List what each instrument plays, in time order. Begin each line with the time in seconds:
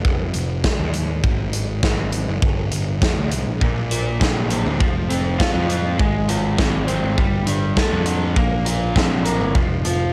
0.05 picked electric bass F1, kick
0.34 picked electric bass F1, closed hi-hat
0.64 kick, snare
0.79 picked electric bass D#2
0.94 closed hi-hat
1.24 picked electric bass G#1, kick
1.53 closed hi-hat
1.83 picked electric bass G#1, kick, snare
2.12 closed hi-hat
2.28 picked electric bass F#1
2.42 picked electric bass G1, kick
2.72 picked electric bass G1, closed hi-hat
3.02 picked electric bass F2, kick, snare
3.18 picked electric bass D2
3.32 picked electric bass C2, closed hi-hat
3.47 picked electric bass A#1
3.61 picked electric bass A#1, overdriven electric guitar A#2, kick
3.91 overdriven electric guitar A#3, closed hi-hat
4.20 picked electric bass A#1, overdriven electric guitar D3, kick, snare
4.50 overdriven electric guitar C4, closed hi-hat
4.66 picked electric bass D2
4.80 picked electric bass F1, overdriven electric guitar F3, kick
5.09 picked electric bass F1, overdriven electric guitar C4, closed hi-hat
5.38 overdriven electric guitar F4, kick, snare
5.55 picked electric bass F2
5.69 overdriven electric guitar C4, closed hi-hat
5.98 picked electric bass G#1, overdriven electric guitar G#3, kick
6.29 overdriven electric guitar F4, closed hi-hat
6.57 picked electric bass G#1, overdriven electric guitar C4, kick, snare
6.87 overdriven electric guitar C5, closed hi-hat
7.03 picked electric bass G#1
7.17 picked electric bass G1, overdriven electric guitar G3, kick
7.46 picked electric bass G1, overdriven electric guitar D4, closed hi-hat
7.77 overdriven electric guitar A4, kick, snare
7.92 picked electric bass F2
8.06 overdriven electric guitar D4, closed hi-hat
8.36 picked electric bass A#1, overdriven electric guitar A#3, kick
8.65 overdriven electric guitar F4, closed hi-hat
8.95 picked electric bass A#1, overdriven electric guitar C4, kick, snare
9.25 overdriven electric guitar A#4, closed hi-hat
9.40 picked electric bass G1
9.54 picked electric bass F1, overdriven electric guitar F3, kick
9.85 picked electric bass F1, overdriven electric guitar F4, closed hi-hat